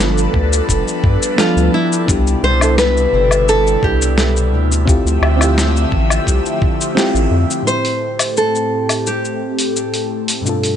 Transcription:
Already playing: G1 F3 G3 B3 D4 F4 A4 B4
0.00 cabasa
0.18 cabasa
0.34 D2, kick
0.53 cabasa
0.69 F1, kick, cabasa
0.88 cabasa
1.04 G2, kick
1.22 cabasa
1.37 F3 B3 D4 F4 A4, snare, cabasa
1.57 D2, cabasa
1.74 E4
1.92 cabasa
2.06 C2 B2 C3 B3 D4 E4, kick, cabasa
2.10 G4
2.27 cabasa
2.43 C2 C5
2.59 B3 D4 E4 A4, cabasa, low woodblock
2.78 B4, snare, cabasa
2.97 cabasa
3.13 G1
3.31 cabasa, low woodblock
3.49 A4, cabasa
3.67 cabasa
3.83 C2 G4, kick
4.02 cabasa
4.18 snare, cabasa
4.36 cabasa
4.52 D2
4.72 cabasa
4.85 D3 F3 A3 C4 E4 F4 G4 E5, kick, cabasa
5.05 D2, cabasa
5.22 D2, low woodblock
5.37 C4 E4
5.41 F4 G4, cabasa, low woodblock
5.58 snare, cabasa
5.77 cabasa
5.92 A1, kick
6.10 cabasa, low woodblock
6.27 C2, kick, cabasa
6.46 cabasa
6.62 kick
6.81 cabasa
6.95 C4 E4 F4 G4, snare, cabasa
7.15 A1, cabasa
7.31 F2
7.50 cabasa
7.63 A2 A3 C4 E4 G4 A4
7.67 G4 C5, cabasa
7.85 open hi-hat, cabasa
8.19 open hi-hat, cabasa, low woodblock
8.37 A4, cabasa
8.55 cabasa
8.89 open hi-hat, cabasa, low woodblock
9.07 G4, cabasa
9.25 cabasa
9.59 open hi-hat, cabasa
9.76 cabasa
9.94 open hi-hat, cabasa
10.28 open hi-hat, cabasa
10.42 G2 B2 D4
10.46 G2 G3 F4 A4, cabasa
10.63 open hi-hat, cabasa

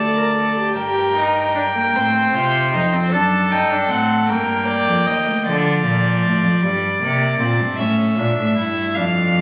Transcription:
Already playing: D2 A4 D5 A5
0.16 A#4
0.36 A4
0.57 G4
0.77 G2 G4 A#4 G5
1.16 D#4
1.55 D4
1.75 A#3
1.95 A2 C4 C5
2.34 C3 F4
2.73 F2 D#4
2.93 C4
3.12 F#2 D4 A4 A5
3.51 G2 D#4 G5
3.71 D4
3.90 A2 C4 F#5
4.29 G2 A#3 A#4 G5
4.68 D5
4.88 F2
5.07 D#2 D#5
5.27 D2
5.46 D3 F3 D5
5.85 A#2
6.23 A2
6.43 F2
6.62 G2 G3
7.01 C3 A#3
7.40 A#2 C4
7.60 G2
7.79 A2 C#4 E5
8.18 A#2 D4
8.38 A2
8.57 G2 E4
8.95 F2 D4 F5

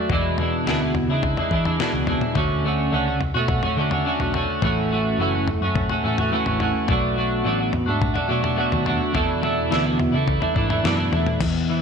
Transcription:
Already playing: D4
0.10 E2 B2 E3 G#3 D4 E4, kick, floor tom
0.38 E3 G#3 D4 E4, floor tom
0.66 D2 E2 B2 E3 G#3 D4 E4, snare
0.81 E3 G#3 D4 E4
0.95 muted clean electric guitar stroke, floor tom
1.08 C#3 E3 G#3 D4 E4
1.23 kick, floor tom
1.37 E3 G#3 D4 E4, floor tom
1.51 E3 G#3 D4 E4, kick
1.64 E3 G#3 D4 E4, floor tom
1.79 E2 B2 E3 G#3 D4 E4, snare
1.93 C#2 E3 G#3 D4 E4
2.07 E3 G#3 D4 E4, floor tom
2.21 mid tom
2.35 D2 D3 A3 C#4 F#4, kick, floor tom
2.64 D3 A3 C#4 F#4
2.92 C#2 D3 A3 C#4 F#4
3.06 A3 C#4 F#4
3.20 muted clean electric guitar stroke, floor tom
3.34 B2 A3 C#4 F#4
3.48 kick, floor tom, mid tom
3.63 A3 C#4 F#4, floor tom
3.77 D3 A3 C#4 F#4
3.91 A3 C#4 F#4, floor tom
4.05 D3 A3 C#4 F#4
4.19 B1 A3 C#4 F#4, floor tom
4.34 D3 A3 C#4 F#4, floor tom
4.62 A1 A2 E3 A3 C#4 F#4, kick, floor tom
4.90 E3 A3 C#4 F#4
5.18 F#1 A2 E3 A3 C#4 F#4
5.33 A3 C#4 F#4
5.48 muted clean electric guitar stroke, floor tom
5.61 F#2 A3 C#4 F#4
5.75 kick, floor tom, mid tom
5.90 A3 C#4 F#4, floor tom
6.03 A2 E3 A3 C#4 F#4
6.17 A3 C#4 F#4, floor tom
6.31 A2 E3 A3 C#4 F#4
6.45 A1 A3 C#4 F#4, floor tom
6.60 E3 A3 C#4 F#4, floor tom
6.88 B1 B2 F#3 A3 D4 F#4, kick, floor tom
7.16 F#3 A3 D4 F#4
7.44 A1 B2 F#3 A3 D4 F#4
7.58 A3 D4 F#4
7.73 muted clean electric guitar stroke, floor tom
7.86 G#2 A3 D4 F#4
8.02 kick, floor tom, mid tom
8.14 A3 D4 F#4, floor tom
8.28 B2 F#3 A3 D4 F#4
8.41 A3 D4 F#4, floor tom
8.56 B2 F#3 A3 D4 F#4
8.70 D#2 A3 D4 F#4, floor tom
8.85 F#3 A3 D4 F#4, floor tom
9.12 E2 B2 E3 A3 D4 E4, kick, floor tom
9.41 E3 A3 D4 E4, floor tom
9.70 D2 E2 B2 E3 A3 D4 E4, snare
9.84 E3 A3 D4 E4
9.99 muted clean electric guitar stroke, floor tom
10.12 C#3 E3 A3 D4 E4
10.28 kick, floor tom
10.40 E3 A3 D4 E4, floor tom
10.54 G#2 E3 A3 D4 E4, kick
10.68 E3 A3 D4 E4, floor tom
10.83 E2 F#2 B2 E3 A3 D4 E4, snare
10.97 E3 A3 D4 E4
11.12 E2 E3 A3 D4 E4, floor tom
11.26 mid tom
11.40 E2, kick, floor tom, crash
11.70 E3

